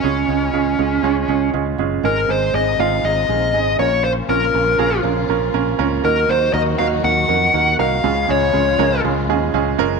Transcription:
<<
  \new Staff \with { instrumentName = "Lead electric guitar" } { \time 4/4 \key des \major \tempo 4 = 120 des'2. r4 | bes'8 c''8 ees''8 f''8 ees''4. des''8 | c''8 bes'4. r2 | bes'8 c''8 ees''8 f''8 ges''4. f''8~ |
f''8 des''4. r2 | }
  \new Staff \with { instrumentName = "Upright piano" } { \time 4/4 \key des \major <aes des' f' aes'>8 <aes des' f' aes'>8 <aes des' f' aes'>8 <aes des' f' aes'>8 <aes des' f' aes'>8 <aes des' f' aes'>8 <aes des' f' aes'>8 <aes des' f' aes'>8 | <aes c' ees' aes'>8 <aes c' ees' aes'>8 <aes c' ees' aes'>8 <aes c' ees' f'>8 <aes c' ees' aes'>8 <aes c' ees' aes'>8 <aes c' ees' aes'>8 <bes des' f' bes'>8~ | <bes des' f' bes'>8 <bes des' f' bes'>8 <bes des' f' bes'>8 <bes des' f' aes'>8 <bes des' f' bes'>8 <bes des' f' bes'>8 <bes des' f' bes'>8 <bes des' f' bes'>8 | <bes ees' ges' bes'>8 <bes ees' ges' c''>8 <bes ees' ges' bes'>8 <bes ees' ges' bes'>8 <bes ees' ges' bes'>8 <bes ees' ges' bes'>8 <bes ees' ges' bes'>8 <bes ees' ges' bes'>8 |
<aes des' f' aes'>8 <aes des' f' aes'>8 <aes des' f' aes'>8 <aes des' f' bes'>8 <aes des' f' aes'>8 <aes des' f' aes'>8 <aes des' f' aes'>8 <aes des' f' bes'>8 | }
  \new Staff \with { instrumentName = "Upright piano" } { \clef bass \time 4/4 \key des \major des4. r2 r8 | aes,4. r2 bes,8~ | bes,4 r2. | ees4. r2 r8 |
des4. r2 r8 | }
  \new Staff \with { instrumentName = "String section" } { \clef bass \time 4/4 \key des \major << { r1 | <c ees ees'>2.~ <c ees ees'>8 <des f f'>8~ | <des f f'>1 | <ees ges ges'>1 |
<des f f'>1 | } \\ { r1 | aes2.~ aes8 bes8~ | bes1~ | bes1 |
aes1 | } >> }
  \new Staff \with { instrumentName = "Fingered electric bass" } { \clef bass \time 4/4 \key des \major des,8 des,8 des,8 des,8 des,8 des,8 des,8 ges,,8 | aes,,8 aes,,8 aes,,8 aes,,8 aes,,8 bes,,8 aes,,8 bes,,8~ | bes,,8 bes,,8 bes,,8 bes,,8 bes,,8 bes,,8 bes,,8 des,8 | ees,8 ees,8 ees,8 ees,8 ees,8 f,8 ees,8 c,8 |
des,8 des,8 des,8 des,8 des,8 ees,8 des,8 ges,,8 | }
>>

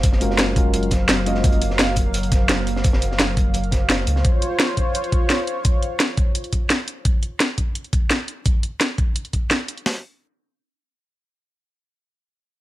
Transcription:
<<
  \new Staff \with { instrumentName = "Analog synth pad" } { \time 4/4 \key des \major \tempo 4 = 171 <ges bes f''>1~ | <ges bes f''>1~ | <ges bes f''>2.~ <ges bes f''>8 <f' c'' des''>8~ | <f' c'' des''>1~ |
<f' c'' des''>1 | r1 | r1 | r1 |
r1 | }
  \new Staff \with { instrumentName = "Tine electric piano" } { \time 4/4 \key des \major r8 <aes des' f' ges' bes'>4 <aes des' f' ges' bes'>4 r4 <aes des' f' ges' ees''>8~ | <aes des' f' ges' ees''>8 r2. r8 | r1 | r1 |
r1 | r1 | r1 | r1 |
r1 | }
  \new Staff \with { instrumentName = "Sub bass" } { \clef bass \time 4/4 \key des \major ges,,1 | ges,,1 | ges,,2.~ ges,,8 des,8 | r1 |
r1 | r1 | r1 | r1 |
r1 | }
  \new DrumStaff \with { instrumentName = "Drums" } \drummode { \time 4/4 <hh bd>16 sn16 hh16 sn16 <hh sn>8 <hh bd>8 hh16 hh16 <hh bd sn>8 <hh sn>8 hh16 sn16 | <hh bd>16 hh16 hh16 sn16 <hh sn>8 <hh bd>8 hh16 hh16 <hh bd sn>8 <hh sn>8 hh16 sn16 | <hh bd>16 sn16 hh16 sn16 <hh sn>8 <hh bd>8 hh16 hh16 <hh bd sn>8 <hh sn>8 hh16 sn16 | <hh bd>8 hh8 <hh sn>8 <hh bd>8 hh16 hh16 <hh bd>8 <hh sn>8 hh8 |
<hh bd>8 hh8 <hh sn>8 <hh bd>8 hh16 hh16 <hh bd>8 <hh sn>8 hh8 | <hh bd>8 hh8 <hh sn>8 <hh bd>8 hh16 hh16 <hh bd>8 <hh sn>8 hh8 | <hh bd>8 hh8 <hh sn>8 <hh bd>8 hh16 hh16 <hh bd>8 <hh sn>8 hh16 hh16 | <hho sn>4 r4 r4 r4 |
r4 r4 r4 r4 | }
>>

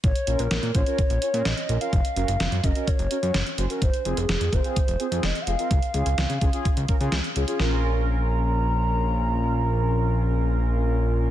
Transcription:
<<
  \new Staff \with { instrumentName = "Soft synth lead" } { \time 4/4 \key bes \minor \tempo 4 = 127 des''8. bes'8. des''8 des''4 ees''8. f''16 | f''4. ees''8 des''4. r8 | c''8. aes'8. c''8 c''4 ees''16. ges''32 f''8 | f''2. r4 |
bes''1~ | bes''1 | }
  \new Staff \with { instrumentName = "Analog polysynth" } { \time 4/4 \key bes \minor r8 <des' f' bes'>16 r8. <des' f' c''>16 <des' f' bes'>16 r8 <des' f' des''>16 <des' f' bes'>16 r8 <des' f' bes'>16 <des' f' bes'>16 | r8 <des' ges' bes'>16 r8. <des' ges' bes'>16 <des' ges' bes'>16 r8 <des' ges' bes'>16 <des' ges' des''>16 r8 <des' ges' c''>16 <des' ges' bes'>16 | r8 <c' f' aes'>16 r8. <c' f' bes'>16 <c' f' aes'>16 r8 <c' f' aes'>16 <c' f' aes'>16 r8 <c' f' aes'>16 <c' f' bes'>16 | r8 <des' f' aes'>16 r8. <des' f' aes'>16 <des' f' aes'>16 r8 <des' f' bes'>16 <des' f' aes'>16 r8 <des' f' aes'>16 <des' f' aes'>16 |
<des' f' bes'>1~ | <des' f' bes'>1 | }
  \new Staff \with { instrumentName = "Analog synth bass" } { \clef bass \time 4/4 \key bes \minor bes,,16 r16 bes,,16 bes,,16 bes,,16 bes,16 bes,,16 r8 bes,,16 r16 bes,16 bes,,16 r16 bes,,16 r16 | ges,,16 r16 ges,,16 ges,,16 ges,,16 ges,16 ges,,16 r8 ges,,16 r16 ges,16 ges,,16 r16 ges,,16 r16 | f,,16 r16 f,,16 f,,16 f,,16 f,16 f,,16 r8 f,,16 r16 f,16 f,,16 r16 f,,16 r16 | des,16 r16 des,16 des,16 des,16 des16 des,16 r8 des,16 r16 des16 des,16 r16 des,16 r16 |
bes,,1~ | bes,,1 | }
  \new DrumStaff \with { instrumentName = "Drums" } \drummode { \time 4/4 <hh bd>16 hh16 hh16 hh16 <hh sn>16 hh16 <hh bd>16 hh16 <hh bd>16 hh16 hh16 hh16 <hh sn>16 hh16 hh16 hh16 | <hh bd>16 hh16 hh16 hh16 <hh sn>16 hh16 <hh bd>16 hh16 <hh bd>16 hh16 hh16 hh16 <hh sn>16 hh16 hh16 hh16 | <hh bd>16 hh16 hh16 hh16 <hh sn>16 hh16 <hh bd>16 hh16 <hh bd>16 hh16 hh16 hh16 <hh sn>16 hh16 hh16 hh16 | <hh bd>16 hh16 hh16 hh16 <hh sn>16 hh16 <hh bd>16 hh16 <hh bd>16 hh16 <hh bd>16 hh16 <hh sn>16 hh16 hh16 hh16 |
sn4 r4 r4 r4 | r4 r4 r4 r4 | }
>>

